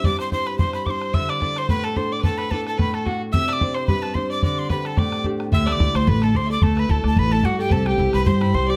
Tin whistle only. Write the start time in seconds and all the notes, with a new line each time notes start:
0.06 D6
0.21 C6
0.33 C6
0.47 B5
0.59 C6
0.74 B5
0.86 D6
0.90 C6
1.14 E6
1.30 D6
1.58 C6
1.70 B5
1.84 A5
1.97 C6
2.13 D6
2.24 A5
2.38 B5
2.51 A5
2.68 A5
2.81 B5
2.95 A5
3.07 F#5
3.33 E6
3.48 E6
3.53 D6
3.74 C6
3.88 B5
4.02 A5
4.14 C6
4.31 D6
4.45 D6
4.59 C6
4.70 B5
4.86 A5
4.99 D6
5.54 E6
5.68 E6
5.72 D6
5.96 C6
6.09 B5
6.24 A5
6.36 C6
6.52 D6
6.63 A5
6.79 B5
6.91 A5
7.07 A5
7.19 B5
7.32 A5
7.45 F#5
7.60 G5
7.72 A5
7.86 G5
8.14 B5
8.26 C6
8.41 B5
8.55 C6
8.70 D6